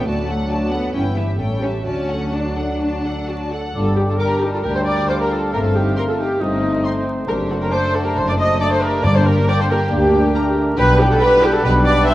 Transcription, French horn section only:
0.06 F#3 D4
0.93 E3 B3
1.38 G3 C#4
1.85 F#3 D4
3.75 G3 D4
4.20 G3 D4
4.65 G3 D4
5.53 A3 C4
6.40 A3 C4
7.27 A3 D4
8.60 A3 D4
9.02 A#3 D4
9.46 A#3 D4
9.89 A#3 D4
10.34 A3
10.77 G3 D4
11.21 G3 D4
11.64 G3 D4

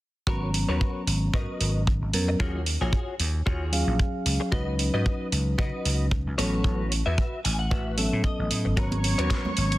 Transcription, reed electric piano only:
0.27 F#3 B3 C#4 A#5
2.13 F#3 B3 C#4 A#4
2.40 F#3 C#4 G#4
3.72 F#3 C#4 G#4 F5
4.51 F#3 C#4 D#4 B4
6.37 F#3 B3 C#4 A4
6.64 F#3 B3 C#4 A4
7.96 F#3 B3 C#4 A4
8.76 F#3 B3 C#4 A#5

